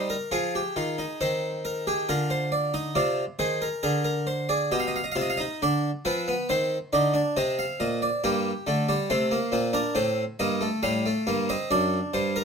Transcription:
Already playing: G3 D#4
0.10 A#4
0.32 F3 F4 G#4
0.55 G4
0.76 D#3 F4
0.98 D#4
1.21 D#3 C4 C5
1.65 A#4
1.87 G4 G#4
2.09 D3 F4 A#4
2.30 C5
2.52 D5
2.74 D#4 D#5
2.95 C3 F4 D5
3.39 D#3 G#4 C5
3.62 A#4
3.83 D3 G#4 A#4
4.04 A#4
4.27 C5
4.49 G#4 D5
4.71 B2 G4 D#5
4.80 F5
4.87 D#5
4.96 F5
5.04 D#5
5.12 F4 F5
5.16 C3
5.21 D#5
5.30 F5
5.37 D#4 D#5
5.62 D3 D4 D5
6.05 F3 C4 B4
6.28 B3
6.49 D#3 C4 C5
6.93 D3 D#4 D5
7.14 D4
7.37 C3 C4 D#5
7.59 F5
7.80 A#2 D#5
8.02 D5
8.24 G2 A#3 G4
8.67 D3 A3
8.89 G3 D5
9.10 C3 A3 C5
9.31 A#3
9.52 A#2 C4
9.73 D4 A#4
9.95 A2 C4 C5
10.39 G2 A#3 D#5
10.61 A3
10.83 A2 G3 F5
11.06 A3
11.27 G2 A#3
11.49 C4 D#5
11.71 F#2 D4 D5
12.14 G2 C5
12.36 A#4

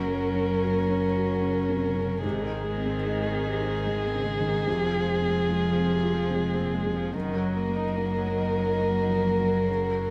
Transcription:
Already playing: F#1 F#2 F#3 A#3 C#4 F#4 A#4 C#5
0.07 A#4
0.35 C#4
0.63 F#4
0.88 C#4
1.17 F#4
1.42 C#3
1.69 C3
1.95 C#3
2.21 G#1 G#2 C3 D#3 G#3 D#4 G#4 C5
2.44 D#3
2.50 G#4
2.64 G#3
2.77 C4
2.86 C4
3.05 G#3 D#4
3.27 D#3
3.32 C4
3.48 C3
3.60 D#4
3.67 D#3
3.87 D#3 G#3
4.07 C4
4.14 C#3
4.27 G#3
4.40 D#3
4.47 D#3
4.66 F1 F2 C3 F3 F4
4.87 F3
4.94 G#4
5.08 G#3
5.22 C4
5.28 C4
5.49 G#3 F4
5.71 F3
5.76 C4
5.93 C3
6.03 F4
6.14 F3
6.31 C3
6.35 G#3
6.55 C4
6.59 A#2
6.74 G#3
6.86 C3
6.96 F3
7.13 F#1 F#2 D#3 F#3 A#3 F#4 A#4 D#5
7.36 F#3
7.40 A#4
7.57 A#3
7.68 A#3
7.76 D#4
7.96 A#3 D#4
8.18 F#3
8.24 A#3
8.39 D#3
8.51 D#4
8.60 F#3
8.79 F#3 A#3
9.01 D#4
9.09 F3
9.23 A#3
9.38 F#3
9.45 F#3
9.67 F#2 C#3 C#5
9.90 F#3
9.97 A#4

